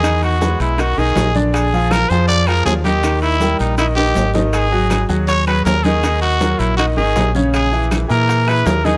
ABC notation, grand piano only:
X:1
M:4/4
L:1/8
Q:1/4=160
K:D#phr
V:1 name="Grand piano"
[D,Dd]2 [G,GB]2 [D,Dd] [D,Dd]2 [=D,=D=d]- | [=D,=D=d] [^E,^EG]2 [E,EG]2 [E,EG]2 [^D,^D^d] | [D,Dd]2 [=G,=GA]2 [D,Dd] [D,Dd]2 [D,Dd]- | [D,Dd] [F,FG]2 [F,FG]2 [F,FG]2 [D,Dd] |
[D,Dd]2 [F,FA]2 [D,Dd] [D,Dd]2 [C,Cc]- | [C,Cc] [E,EG]2 [E,EG]2 [E,EG]2 [D,Dd] |]